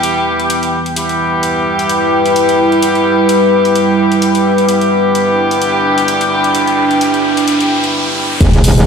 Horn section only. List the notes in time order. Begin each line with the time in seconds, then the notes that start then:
Already playing: G3 B3 E4 G4
0.96 G3 B3 E4 G4
4.69 G3 B3 E4 G4